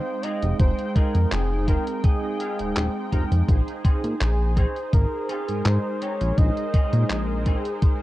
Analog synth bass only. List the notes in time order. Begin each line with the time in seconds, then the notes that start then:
0.43 F1
0.59 F1
1.15 F2
1.32 F1
2.60 D#1
2.76 D#1
3.12 F1
3.32 F2
3.48 A#1
4.04 A#2
4.21 A#1
4.93 G#1
5.49 G#2
5.65 G#2
6.21 A#1
6.38 A#1
6.93 A#2
7.10 A#1